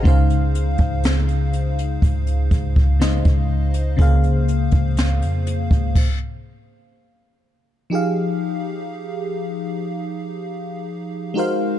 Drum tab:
CC |----------------|--------x-------|----------------|
HH |xxxxxxxxxxx-xx-x|xxxxxxxx--------|----------------|
SD |----o-------o---|----o-----------|----------------|
BD |o--o----o-oo-o--|o--o---oo-------|----------------|